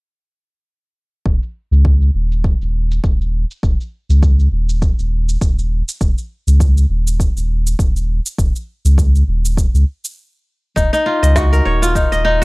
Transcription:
1.26 1.39 D#1 medium
1.26 kick medium
1.26 shaker soft
1.43 shaker soft
1.71 2.10 C#2 medium
1.71 shaker medium
1.85 kick medium
1.85 shaker soft
2.02 shaker soft
2.14 2.55 D#1 loud
2.32 shaker medium
2.44 kick medium
2.44 shaker soft
2.61 2.99 D#1 medium
2.61 shaker soft
2.91 shaker medium
3.04 3.44 D#1 medium
3.04 kick loud
3.04 shaker soft
3.21 shaker soft
3.51 shaker medium
3.63 3.76 D#1 loud
3.63 kick medium
3.63 shaker medium
3.81 shaker soft
4.09 4.48 C#2 medium
4.09 shaker medium
4.23 kick loud
4.23 shaker medium
4.40 shaker soft
4.52 4.93 D#1 medium
4.69 shaker medium
4.82 kick medium
4.82 shaker medium
4.98 5.37 D#1 medium
4.98 shaker soft
5.29 shaker medium
5.41 5.82 D#1 medium
5.41 kick loud
5.41 shaker medium
5.59 shaker soft
5.88 shaker medium
6.01 6.14 D#1 loud
6.01 kick loud
6.01 shaker soft
6.18 shaker soft
6.47 6.85 C#2 medium
6.47 shaker medium
6.60 kick loud
6.60 shaker medium
6.77 shaker soft
6.89 7.30 D#1 loud
7.07 shaker medium
7.20 kick medium
7.20 shaker medium
7.36 7.74 D#1 medium
7.36 shaker soft
7.67 shaker medium
7.79 8.20 D#1 medium
7.79 kick loud
7.79 shaker medium
7.96 shaker soft
8.26 shaker medium
8.38 8.52 D#1 medium
8.38 kick loud
8.38 shaker medium
8.56 shaker soft
8.85 9.23 C#2 medium
8.85 shaker medium
8.98 kick loud
8.98 shaker medium
9.16 shaker soft
9.28 9.68 D#1 medium
9.45 shaker medium
9.57 kick loud
9.57 shaker medium
9.74 9.84 C#2 loud
9.74 shaker soft
10.05 shaker medium
10.76 10.89 D#1 loud
10.76 10.93 D#4 medium
10.76 kick loud
10.76 shaker soft
10.93 11.95 D#4 medium
10.93 shaker soft
11.06 11.42 F4 medium
11.23 11.61 C#2 medium
11.23 12.12 D#5 medium
11.23 shaker medium
11.36 11.88 F#4 medium
11.36 kick loud
11.36 snare medium
11.36 shaker medium
11.53 12.44 A#4 medium
11.53 shaker soft
11.65 12.06 D#1 medium
11.65 12.44 C#5 medium
11.82 12.44 F4 medium
11.82 shaker medium
11.95 12.24 D#4 medium
11.95 kick medium
11.95 shaker medium
12.12 12.44 D#1 medium
12.12 12.44 D#5 medium
12.12 shaker soft
12.25 12.44 D#4 medium

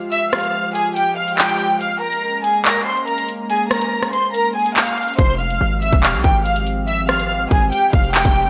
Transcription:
0.00 1.77 F3 medium
0.00 8.50 G#3 medium
0.00 1.77 F4 medium
0.00 1.77 G4 medium
0.12 0.28 E5 loud
0.12 0.29 E6 medium
0.12 closed hi-hat medium
0.33 0.72 F5 medium
0.33 0.73 F6 medium
0.33 cross-stick loud
0.43 closed hi-hat medium
0.75 0.92 G#4 medium
0.75 0.92 G#5 medium
0.75 closed hi-hat medium
0.96 1.13 G4 medium
0.96 1.13 G5 loud
0.96 closed hi-hat medium
1.17 1.34 F5 medium
1.17 1.35 F6 medium
1.28 closed hi-hat medium
1.38 1.79 G4 medium
1.38 1.78 G5 medium
1.38 clap loud
1.49 closed hi-hat medium
1.60 closed hi-hat medium
1.81 5.15 A#3 medium
1.81 5.15 C#4 medium
1.81 1.98 F5 medium
1.81 1.98 F6 medium
1.81 closed hi-hat medium
2.02 2.42 A#4 medium
2.02 2.42 A#5 medium
2.12 closed hi-hat medium
2.44 2.61 G#4 medium
2.44 2.61 G#5 medium
2.44 closed hi-hat medium
2.65 2.83 A#4 medium
2.65 2.82 A#5 medium
2.65 clap loud
2.86 3.04 C5 medium
2.86 3.03 C6 medium
2.97 closed hi-hat soft
3.07 3.25 A#4 medium
3.07 3.24 A#5 medium
3.07 closed hi-hat medium
3.18 closed hi-hat medium
3.28 closed hi-hat medium
3.50 3.68 G#4 medium
3.50 3.67 G#5 loud
3.50 closed hi-hat medium
3.71 4.11 A#4 medium
3.71 4.10 A#5 medium
3.71 cross-stick loud
3.81 closed hi-hat medium
4.03 cross-stick medium
4.13 4.30 C5 medium
4.13 4.30 C6 medium
4.13 closed hi-hat medium
4.34 4.51 A#4 medium
4.34 4.51 A#5 medium
4.34 closed hi-hat medium
4.55 4.72 G#4 medium
4.55 4.72 G#5 medium
4.66 closed hi-hat medium
4.76 5.16 F5 medium
4.76 5.16 F6 medium
4.76 clap loud
4.87 closed hi-hat medium
4.98 closed hi-hat medium
5.03 closed hi-hat medium
5.08 closed hi-hat medium
5.13 closed hi-hat soft
5.19 5.59 F1 loud
5.19 8.50 F3 medium
5.19 8.50 C4 medium
5.19 8.50 G4 medium
5.19 5.36 C5 loud
5.19 5.36 C6 medium
5.19 kick loud
5.19 closed hi-hat medium
5.40 5.79 F5 medium
5.40 5.80 F6 medium
5.50 closed hi-hat medium
5.61 5.91 G#1 loud
5.82 5.99 E5 medium
5.82 5.99 E6 medium
5.82 closed hi-hat medium
5.93 6.15 E1 loud
5.93 kick medium
6.03 6.20 F5 medium
6.03 6.20 F6 medium
6.03 clap loud
6.14 6.24 C2 loud
6.24 7.47 G#1 loud
6.24 6.41 G4 medium
6.24 6.41 G5 medium
6.24 kick medium
6.35 closed hi-hat soft
6.45 6.62 F5 medium
6.45 6.63 F6 medium
6.45 closed hi-hat medium
6.56 closed hi-hat medium
6.67 closed hi-hat medium
6.88 7.05 E5 loud
6.88 7.05 E6 medium
6.88 closed hi-hat medium
7.09 7.49 F5 medium
7.09 7.49 F6 medium
7.09 cross-stick loud
7.19 closed hi-hat medium
7.51 7.71 G#1 loud
7.51 7.68 G#4 medium
7.51 7.68 G#5 medium
7.51 kick medium
7.51 closed hi-hat medium
7.72 7.90 G4 medium
7.72 7.89 G5 loud
7.72 closed hi-hat medium
7.93 8.24 F1 loud
7.93 8.10 F5 medium
7.93 8.11 F6 medium
7.93 kick medium
8.04 closed hi-hat medium
8.14 8.50 G4 medium
8.14 8.50 G5 medium
8.14 clap loud
8.25 8.48 F1 loud
8.25 kick medium
8.25 closed hi-hat medium
8.36 closed hi-hat medium
8.46 8.50 C2 medium

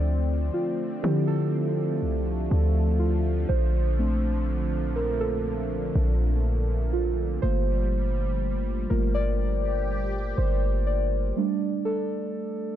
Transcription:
0.00 0.51 D2 loud
0.00 11.32 D3 medium
0.00 9.36 F3 medium
0.00 7.39 A3 medium
0.00 3.46 C4 medium
0.00 3.52 D5 loud
0.54 1.05 F4 medium
1.03 2.04 D3 loud
1.03 2.47 F3 medium
1.03 2.48 C4 soft
1.03 2.48 E4 medium
1.03 1.14 G4 medium
1.27 3.05 A4 medium
2.02 2.49 C2 loud
2.51 3.46 D2 loud
2.99 3.46 F4 medium
3.49 5.91 A#1 loud
3.49 11.33 A#2 medium
3.49 5.01 C5 medium
3.99 4.64 A3 medium
3.99 4.64 C4 medium
3.99 4.65 D4 medium
4.96 5.22 A#4 medium
5.20 6.98 A4 medium
5.95 7.39 A#1 loud
6.93 7.39 F4 medium
7.42 8.87 G1 loud
7.42 11.32 G3 medium
7.42 8.08 A3 medium
7.42 8.09 A#3 medium
7.42 8.09 F4 medium
7.42 8.94 C5 loud
8.90 10.34 G1 medium
8.90 9.36 A3 soft
8.90 9.36 A#3 soft
8.90 9.36 F4 medium
8.90 9.16 A#4 medium
9.14 10.41 D5 loud
9.40 11.34 G4 medium
10.37 11.33 G1 loud
10.37 10.88 C5 medium
10.87 11.88 D5 loud
11.37 12.76 G3 medium
11.37 12.76 A3 medium
11.37 12.76 D4 medium
11.85 12.76 A4 loud

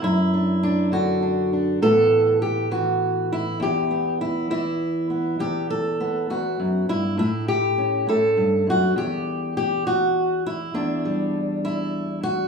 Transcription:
0.02 1.78 F#2 medium
0.02 0.92 E4 medium
0.33 0.62 D4 soft
0.63 1.21 D4 medium
0.92 1.82 D3 medium
0.92 1.82 F#4 medium
1.22 1.52 D4 soft
1.53 1.79 D4 soft
1.82 3.61 A2 medium
1.82 2.71 E3 medium
1.82 3.91 B3 medium
1.82 2.41 A4 loud
2.42 2.71 G4 medium
2.71 4.50 E3 medium
2.71 3.31 F#4 medium
3.33 3.62 E4 medium
3.60 5.38 E2 medium
3.60 4.21 G4 medium
3.91 5.09 B3 soft
4.21 4.50 E4 medium
4.50 6.33 E3 medium
4.50 5.40 E4 medium
5.10 5.99 B3 soft
5.39 6.29 E2 medium
5.39 5.70 G4 medium
5.70 6.29 A4 medium
6.00 7.15 B3 medium
6.30 6.59 E2 medium
6.30 6.89 F#4 medium
6.60 6.88 F#2 medium
6.89 7.18 G2 medium
6.89 7.18 E4 medium
7.17 8.06 A2 medium
7.17 7.48 E4 medium
7.48 8.08 G4 medium
7.78 8.93 C#4 soft
8.07 8.37 A2 medium
8.07 8.13 E4 medium
8.07 8.68 A4 medium
8.37 8.66 G2 medium
8.67 8.96 F#2 medium
8.67 8.97 F#4 medium
8.96 10.73 E2 medium
8.96 9.56 G4 medium
9.57 9.86 G4 medium
9.87 10.45 F#4 medium
10.46 11.35 E4 loud
10.74 12.48 E2 medium
10.74 12.23 D4 medium
11.05 12.48 G3 soft
11.65 12.23 E4 medium
12.23 12.48 F#4 loud

